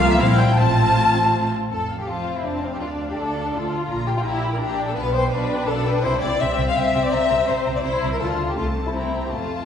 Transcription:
Already playing: C2 F3 F4 F5
0.02 A#3
0.10 E3 E5
0.20 A#1 F3 C4 E4 F5
0.38 G3 G5
0.57 A1 A3 C4 F4 A5
1.71 F1 F2 A4 A5
1.90 F5
1.99 G4
2.07 F1 F2 C4 F4 A5
2.27 F5
2.37 E4
2.45 F1 F2 D4 A5
2.63 C4 F5
2.74 G4
2.80 D2 D4 F4 D5
2.99 F5
3.09 G4
3.16 D2 A4 D5
3.35 F5
3.53 D2 F4 D5
3.71 F5
3.89 A#1 A#2 A#5
4.07 G4 G5
4.17 F4
4.24 A#1 A#2 E4 G4 A#5
4.42 G5
4.53 A#4
4.60 A#1 A#2 D4 G4 A#5
4.78 G5
4.88 A4
4.96 B1 B2 B3 B4 F5
5.14 C5 G5
5.32 B1 B2 D4 B4 F5
5.50 G5
5.68 B1 B2 A4 F5
5.86 B4 G5
6.03 C2 C3 E4 C5 G5
6.22 C2 C3 D5 G5
6.39 C2 C3 C4 E5 G5
6.57 C2 C3 G5
6.69 F5
6.76 C2 C3 C4 E5 G5
6.93 C2 C3 G5
7.04 D5
7.12 C2 C3 E5 A#5
7.29 C2 C3 A#5
7.48 C2 C3 C5 A#5
7.66 C2 C3 A#5
7.76 D5
7.84 C2 C3 E4 C5 A#5
8.02 C2 C3 A#5
8.12 A#4
8.20 D2 D3 F4 A4 A5
8.48 G4
8.56 C2 C3 A3 F4 A5
8.87 E4
8.95 C4 E4 A#5
9.25 G4
9.33 F1 F2 A3 F4 A5

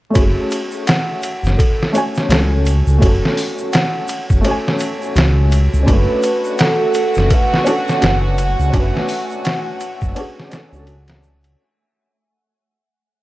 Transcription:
0.10 A3 C#4
0.15 F#1 F#4, kick, ride, shaker
0.20 G#4
0.51 ride, shaker
0.71 shaker
0.87 F#5, snare, ride, shaker
1.23 ride, shaker
1.43 F#1, snare, shaker
1.58 A4, kick, ride, shaker
1.83 snare
1.93 A3 C#4 F#4, ride, shaker
1.97 G#5
2.15 snare, shaker
2.29 C#2 A3 C#4 F#4, snare, ride, shaker
2.34 A4
2.66 ride, shaker
2.87 C#2, shaker
2.98 F#1 A3 C#4 F#4, kick, ride, shaker
3.04 F#4 A4
3.25 snare
3.37 open hi-hat, shaker
3.58 shaker
3.73 F#5, snare, ride, shaker
4.08 ride, shaker
4.30 F#1, kick, shaker
4.41 A3 C#4 A4, ride, shaker
4.48 F#4 G#5
4.68 snare
4.79 ride, shaker
5.02 shaker
5.15 C#2 F#4, snare, ride, shaker
5.52 ride, shaker
5.74 C#2, shaker
5.83 A3 C#4 D4 F#4 G#5
5.87 F#1 F#4 B4, kick, ride, shaker
5.93 A3
6.23 ride, shaker
6.45 shaker
6.58 A4 F#5, snare, ride, shaker
6.94 ride, shaker
7.15 F#1, snare, shaker
7.30 B4 F#5, kick, ride, shaker
7.54 snare
7.64 C#4 D4 F#4, ride, shaker
7.70 A4
7.88 snare, shaker
8.00 F#1 C#4 D4 F#4, ride, shaker
8.04 B4, snare
8.38 ride, shaker
8.59 C#2, shaker
8.70 C#4 D4 F#4, kick, ride, shaker
8.74 F#1 F#4
8.79 B4
8.97 snare
9.09 open hi-hat, shaker
9.30 shaker
9.44 F#5, snare, ride, shaker
9.80 ride, shaker
10.01 F#1, kick, shaker
10.15 C#4 D4 F#4 B4, ride, shaker
10.20 G#4
10.40 snare
10.50 C#4 D4 F#4, snare, ride, shaker
10.55 A4
10.69 C#2 C#4 D4
10.73 F#4, shaker
10.79 A4
10.87 F#4, ride, shaker
11.08 snare, ride
11.23 shaker
11.44 ride, shaker

